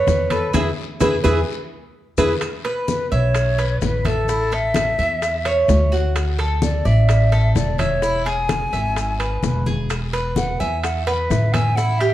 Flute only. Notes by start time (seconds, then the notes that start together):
Already playing: B4
0.32 A4
0.54 G#4
1.01 G#4
1.25 G#4
2.19 G#4
2.89 B4
3.12 C#5
3.83 B4
4.07 A4
4.54 E5
6.63 D5
6.86 E5
7.55 D5
7.78 C#5
8.25 G#5
10.37 F#5
10.60 G#5
10.83 F#5
11.06 F#5
11.30 E5
11.53 G#5
11.76 F#5
11.99 E5